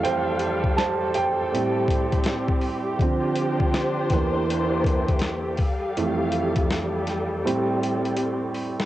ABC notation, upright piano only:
X:1
M:4/4
L:1/8
Q:"Swing 16ths" 1/4=81
K:F
V:1 name="Upright piano"
[cg]2 [ca] [cg]4 z | z8 | z8 |]
V:2 name="Upright piano" clef=bass
[F,,E,A,]2 z2 [A,,G,C]3 z | [D,F,C]3 [E,,E,B,]4 z | [F,,E,A,] z3 [A,,G,C]4 |]